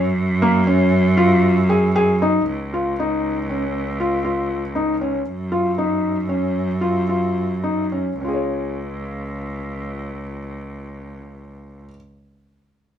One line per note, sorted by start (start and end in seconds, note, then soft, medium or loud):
0.00 2.44 F#2 medium
0.42 0.60 A#3 medium
0.67 1.04 C#4 medium
1.17 1.55 F4 medium
1.69 1.88 G#4 medium
1.96 2.15 G#4 medium
2.22 2.41 D#4 medium
2.49 5.28 C#2 medium
2.74 2.92 F4 medium
3.00 3.36 D#4 medium
3.50 3.86 C#4 medium
4.00 4.18 F4 medium
4.25 4.61 F4 medium
4.75 4.93 D#4 medium
5.01 5.19 C#4 medium
5.26 8.16 F#2 medium
5.52 5.70 F4 medium
5.78 6.15 D#4 medium
6.29 6.67 C#4 medium
6.81 7.01 F4 medium
7.09 7.49 F4 soft
7.64 7.84 D#4 medium
7.92 8.12 C#4 soft
8.20 11.82 C#2 medium
8.20 11.83 C#4 soft
8.25 11.87 F4 soft
8.25 11.90 G#4 soft
8.33 11.95 C#5 soft